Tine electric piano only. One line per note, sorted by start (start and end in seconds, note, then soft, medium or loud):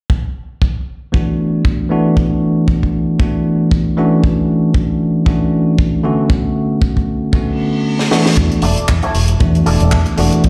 1.12 1.88 E3 medium
1.12 1.88 A3 medium
1.12 1.88 B3 medium
1.12 1.88 D4 medium
1.12 1.89 F#4 medium
1.90 3.17 E3 medium
1.90 3.17 A3 medium
1.90 3.17 B3 medium
1.90 3.17 D4 medium
1.90 3.18 F#4 medium
3.19 3.94 E3 medium
3.19 3.95 A3 medium
3.19 3.95 B3 medium
3.19 3.95 D4 medium
3.19 3.95 F#4 medium
3.97 5.24 E3 medium
3.97 5.24 A3 medium
3.97 5.24 C#4 medium
3.97 5.24 D4 medium
3.97 5.25 F#4 loud
5.26 6.01 E3 medium
5.26 6.01 A3 medium
5.26 6.02 C#4 medium
5.26 6.02 D4 medium
5.26 6.02 F#4 medium
6.03 7.31 D3 medium
6.03 7.31 A3 medium
6.03 7.31 B3 medium
6.03 7.31 C#4 medium
6.03 7.31 F#4 loud
7.33 8.08 D3 medium
7.33 8.09 A3 medium
7.33 8.09 B3 medium
7.33 8.09 C#4 medium
7.33 8.09 F#4 medium
8.11 8.63 E3 medium
8.11 8.63 A3 medium
8.11 8.63 B3 medium
8.11 8.63 D4 medium
8.11 8.63 F#4 loud
9.40 10.15 E3 medium
9.40 10.15 A3 medium
9.40 10.16 B3 medium
9.40 10.16 D4 medium
9.40 10.16 F#4 medium
10.17 10.49 E3 medium
10.17 10.49 A3 medium
10.17 10.49 B3 medium
10.17 10.49 D4 medium
10.17 10.49 F#4 loud